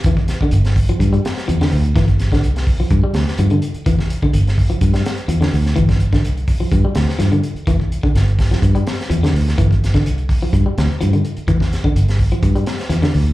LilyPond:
<<
  \new Staff \with { instrumentName = "Clean electric guitar" } { \clef bass \time 4/4 \key c \mixolydian \tempo 4 = 126 e8 r16 d8 r8 f8 g8 r16 f16 d8 r16 | e8 r16 d8 r8 f8 g8 r16 f16 d8 r16 | e8 r16 d8 r8 f8 g8 r16 f16 d8 r16 | e8 r16 d8 r8 f8 g8 r16 f16 d8 r16 |
e8 r16 d8 r8 f8 g8 r16 f16 d8 r16 | e8 r16 d8 r8 f8 g8 r16 f16 d8 r16 | e8 r16 d8 r8 f8 g8 r16 f16 d8 r16 | }
  \new Staff \with { instrumentName = "Fingered electric bass" } { \clef bass \time 4/4 \key c \mixolydian f,,8 r8 g,,4 g,8 r8 e,16 r16 d,8 | g,,4 c,4 g,16 r16 d,16 r16 g,8 r8 | f,,8 r8 g,,4 g,8 r8 e,16 r16 d,8 | g,,4 c,4 g,16 r16 d,16 r16 g,8 r8 |
f,,8 r8 g,,4 g,8 r8 e,16 r16 d,8 | g,,4 c,4 g,16 r16 d,16 r16 g,8 r8 | f,,8 r8 g,,4 g,8 r8 e,16 r16 d,8 | }
  \new DrumStaff \with { instrumentName = "Drums" } \drummode { \time 4/4 <hh bd>16 bd16 <hh sn>16 bd16 hh16 <hh sn>16 <hho bd>16 hh16 <hh bd>16 hh16 <hh sn>16 <hh sn>16 hh16 <hh sn>16 hho16 hh16 | <hh bd sn>16 <hh bd>16 <hh sn>16 <hh bd sn>16 hh16 <hh sn>16 <hho bd>8 <hh bd>8 <hh sn>16 sn16 hh16 hh16 hh16 hh16 | <hh bd>16 <bd sn>16 hh16 bd16 hh16 <hh sn>16 <hho bd>16 hh16 <hh bd>16 <hh sn>16 <hh sn>16 hh16 hh16 <hh sn>16 hho16 <hh sn>16 | <hh bd>16 <hh bd sn>16 hh16 <hh bd sn>16 hh16 hh16 <hho bd>8 <hh bd>8 <hh sn>16 sn16 <hh sn>16 hh16 hh16 hh16 |
<hh bd>16 bd16 hh16 bd16 <hh sn>16 hh16 <hho bd sn>16 <hh sn>16 <hh bd>16 hh16 <hh sn>16 <hh sn>16 hh16 <hh sn>16 hho16 <hh sn>16 | <hh bd>16 <hh bd>16 <hh sn>16 <hh bd sn>16 hh16 hh16 <hho bd>8 <hh bd>8 <hh sn>8 hh16 hh16 hh16 hh16 | <hh bd>16 <bd sn>16 <hh sn>16 bd16 hh16 <hh sn>16 <hho bd>16 hh16 <hh bd>16 hh16 <hh sn>16 <hh sn>16 <hh sn>16 <hh sn>16 hho16 hh16 | }
>>